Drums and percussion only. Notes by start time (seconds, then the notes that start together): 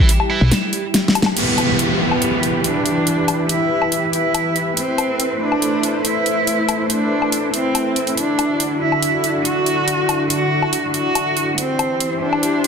0.09 closed hi-hat
0.20 low woodblock
0.52 snare, closed hi-hat
0.73 closed hi-hat
0.94 snare, closed hi-hat
1.08 snare
1.15 closed hi-hat, low woodblock
1.22 snare, low woodblock
1.37 closed hi-hat, crash
1.58 closed hi-hat, low woodblock
1.79 closed hi-hat
2.11 low woodblock
2.22 closed hi-hat
2.43 closed hi-hat
2.64 closed hi-hat
2.86 closed hi-hat
3.07 closed hi-hat
3.28 closed hi-hat, low woodblock
3.49 closed hi-hat
3.82 low woodblock
3.92 closed hi-hat
4.13 closed hi-hat
4.34 closed hi-hat, low woodblock
4.56 closed hi-hat
4.77 closed hi-hat
4.98 closed hi-hat, low woodblock
5.20 closed hi-hat
5.52 low woodblock
5.62 closed hi-hat
5.83 closed hi-hat
6.05 closed hi-hat
6.26 closed hi-hat
6.47 closed hi-hat
6.69 closed hi-hat, low woodblock
6.90 closed hi-hat
7.22 low woodblock
7.32 closed hi-hat
7.54 closed hi-hat
7.75 closed hi-hat, low woodblock
7.96 closed hi-hat
8.07 closed hi-hat
8.17 closed hi-hat
8.39 closed hi-hat, low woodblock
8.60 closed hi-hat
8.92 low woodblock
9.02 closed hi-hat
9.24 closed hi-hat
9.45 closed hi-hat
9.66 closed hi-hat
9.88 closed hi-hat
10.09 closed hi-hat, low woodblock
10.30 closed hi-hat
10.62 low woodblock
10.73 closed hi-hat
10.94 closed hi-hat
11.15 closed hi-hat, low woodblock
11.37 closed hi-hat
11.58 closed hi-hat
11.79 closed hi-hat, low woodblock
12.00 closed hi-hat
12.33 low woodblock
12.43 closed hi-hat